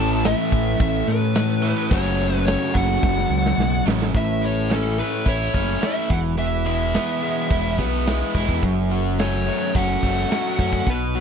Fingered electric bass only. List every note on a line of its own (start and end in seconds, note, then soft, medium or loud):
0.00 0.33 A1 loud
0.52 0.74 A1 loud
0.80 1.02 A1 loud
1.08 1.72 A2 medium
1.91 2.55 F#1 loud
2.75 2.96 F#1 loud
3.03 3.25 F#1 loud
3.30 3.55 C#2 medium
3.58 3.83 B1 medium
3.86 4.12 A1 medium
4.14 5.01 A1 loud
5.26 5.48 A1 medium
5.54 5.76 F#1 medium
6.10 6.96 E1 medium
7.50 7.78 E1 medium
7.78 8.22 B1 medium
8.34 8.45 E1 medium
8.48 8.59 E2 medium
8.63 9.49 F#1 loud
9.75 9.96 F#1 medium
10.02 10.24 F#1 medium
10.59 10.80 F#2 medium
10.87 11.20 B1 loud